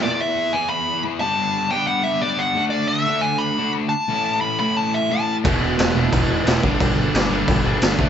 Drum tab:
CC |--------|--------|--------|--------|
SD |--------|--------|--------|--------|
BD |--------|--------|--------|--------|

CC |x-x-x-x-|x-x-x-x-|
SD |--o---o-|--o---o-|
BD |o---o--o|o---o--o|